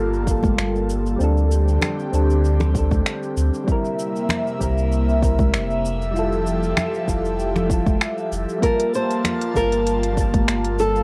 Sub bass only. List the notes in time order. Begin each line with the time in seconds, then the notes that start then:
Already playing: G1
0.58 G1
1.20 D2
2.13 D2
3.37 D2
4.61 C2
5.54 F1
7.08 F1
8.32 F1
9.55 G1
10.48 G1